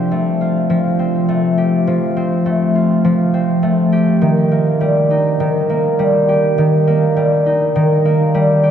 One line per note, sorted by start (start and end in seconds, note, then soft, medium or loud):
0.00 0.27 D3 medium
0.00 0.69 F3 medium
0.00 4.80 G3 medium
0.00 0.99 C4 medium
0.00 0.85 D4 soft
0.00 1.57 G4 medium
0.11 1.28 A3 medium
0.41 2.75 F4 soft
0.70 1.86 F3 medium
0.99 2.16 C4 soft
1.28 2.45 A3 medium
1.58 3.92 G4 medium
1.87 3.03 F3 medium
2.17 3.33 C4 medium
2.46 3.62 A3 medium
2.75 5.28 F4 medium
3.04 4.28 F3 medium
3.34 6.34 C4 medium
3.63 4.57 A3 medium
3.92 6.28 G4 medium
4.22 5.39 D#3 medium
4.51 5.69 A#3 medium
4.81 5.45 G3 medium
5.10 7.46 D#4 medium
5.40 6.57 D#3 medium
5.70 6.87 A#3 medium
5.99 6.63 G3 medium
6.29 8.63 G4 medium
6.58 7.74 D#3 medium
6.87 8.05 A#3 medium
7.17 7.81 G3 medium
7.46 8.71 D#4 medium
7.76 8.71 D#3 medium
8.05 8.71 A#3 medium
8.34 8.71 G3 medium
8.63 8.71 G4 medium